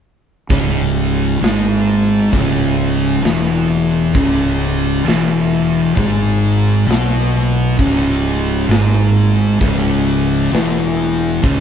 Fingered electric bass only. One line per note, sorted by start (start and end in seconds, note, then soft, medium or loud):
0.50 1.37 C#1 medium
1.42 2.28 G#1 medium
2.33 3.19 C#1 medium
3.22 4.10 E1 loud
4.14 5.01 C#1 medium
5.06 5.93 E1 medium
5.97 6.84 G#1 loud
6.87 7.74 B1 loud
7.79 8.66 C#1 loud
8.69 9.56 G#1 medium
9.61 10.48 C#1 loud
10.52 11.39 E1 loud
11.43 11.60 C#1 medium